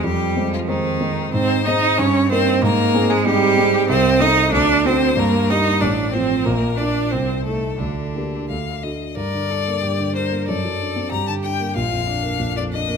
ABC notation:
X:1
M:2/4
L:1/16
Q:1/4=93
K:Ab
V:1 name="Violin"
G3 F E4 | c2 e2 d2 c2 | B3 A G4 | [K:Gm] c2 e2 d2 c2 |
B2 e2 d2 c2 | B2 d2 c2 A2 | D4 f2 e2 | d6 c2 |
d4 b a g2 | f4- f d e2 |]
V:2 name="Cello"
G,3 F, E,4 | C2 E2 D2 C2 | B,3 A, G,4 | [K:Gm] C2 E2 D2 C2 |
B,2 E2 D2 C2 | B,2 D2 C2 A,2 | D,6 z2 | B2 A2 G2 B2 |
A4 G4 | F2 D6 |]
V:3 name="Grand piano"
F,,2 [A,Cc]2 [A,Cc]2 [A,Cc]2 | A,,2 [A,Cc]2 G,,2 [B,EB]2 | A,,2 [CEA]2 [CEA]2 [CEA]2 | [K:Gm] C,,2 [CEA]2 D,,2 [CD^F]2 |
G,,2 [B,DG]2 A,,,2 [F,CF]2 | B,,,2 [B,DF]2 C,,2 [A,EA]2 | D,,2 [B,DG]2 D,,2 [A,D^F]2 | G,, D, D B, G,, D, D B, |
^F,, ^F, D C G,, D, D B, | B,,, F,, D B, B,,, F,, D B, |]